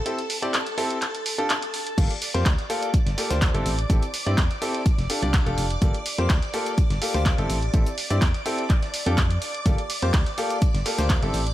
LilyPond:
<<
  \new Staff \with { instrumentName = "String machine" } { \time 4/4 \key g \dorian \tempo 4 = 125 <a' a''>1 | <d'' d'''>1~ | <d'' d'''>1~ | <d'' d'''>1~ |
<d'' d'''>1~ | <d'' d'''>1 | }
  \new Staff \with { instrumentName = "Upright piano" } { \time 4/4 \key g \dorian <c' e' g' a'>16 r8 <c' e' g' d''>16 r8 <c' e' g' a'>16 r4 <d' f' g' a'>16 r4 | <bes f' g' a'>16 r8 <bes f' g' c''>16 r8 <bes f' g' a'>16 r8. <bes f' g' a'>16 <bes f' g' c''>8 <c' e' g' a'>16 r8 | <c' e' g' a'>16 r8 <c' e' g' d''>16 r8 <c' e' g' a'>16 r8. <d' f' g' a'>16 <d' f' g' d''>8 <d' f' g' a'>16 r8 | <bes f' g' a'>16 r8 <bes f' g' c''>16 r8 <bes f' g' a'>16 r8. <bes f' g' a'>16 <bes f' g' c''>8 <c' e' g' a'>16 r8 |
<c' e' g' a'>16 r8 <c' e' g' d''>16 r8 <c' e' g' a'>16 r4 <d' f' g' a'>16 r4 | <bes f' g' a'>16 r8 <bes f' g' c''>16 r8 <bes f' g' a'>16 r8. <bes f' g' a'>16 <bes f' g' c''>8 <c' e' g' a'>16 r8 | }
  \new Staff \with { instrumentName = "FM bass" } { \clef bass \time 4/4 \key g \dorian r1 | g,,16 r8 f,16 d,16 r4 g,,16 r16 d,8 g,,16 a,,8 | a,,16 r8 g,16 e,16 r4 f,,16 r16 c,8 f,,16 f,,8 | g,,16 r8 f,16 d,16 r4 g,,16 r16 d,8 g,,16 a,,8 |
a,,16 r8 g,16 e,16 r4. f,8. r8 | g,,16 r8 f,16 d,16 r4 g,,16 r16 d,8 g,,16 a,,8 | }
  \new DrumStaff \with { instrumentName = "Drums" } \drummode { \time 4/4 hh16 hh16 hho16 hh16 <hc hh>16 hh16 hho16 hh16 <hc hh>16 hh16 hho16 hh16 <hc hh>16 hh16 hho16 hh16 | <cymc hh bd>16 hh16 <hh hho>16 hh16 <hc hh bd sn>16 <hh sn>16 <hh hho>16 hh16 <hh bd>16 <hh sn>16 <hh hho sn>16 <hh sn>16 <hc hh bd sn>16 hh16 <hh hho>16 hh16 | <hh bd>16 hh16 <hh hho>16 hh16 <hc hh bd sn>16 <hh sn>16 <hh hho>16 hh16 <hh bd>16 <hh sn>16 <hh hho>16 hh16 <hc hh bd sn>16 hh16 <hh hho>16 hh16 | <hh bd>16 hh16 <hh hho>16 hh16 <hc hh bd sn>16 <hh sn>16 <hh hho>16 hh16 <hh bd>16 <hh sn>16 <hho sn>16 <hh sn>16 <hc hh bd sn>16 hh16 <hh hho>16 hh16 |
<hh bd>16 hh16 hho16 hh16 <hc hh bd sn>16 <hh sn>16 <hh hho>16 hh16 <hc hh bd>16 <hh sn>16 <hh hho>16 hh16 <hc hh bd sn>16 hh16 <hh hho>16 hh16 | <hh bd>16 hh16 <hh hho>16 hh16 <hc hh bd sn>16 <hh sn>16 <hh hho>16 hh16 <hh bd>16 <hh sn>16 <hh hho sn>16 <hh sn>16 <hc hh bd sn>16 hh16 <hh hho>16 hh16 | }
>>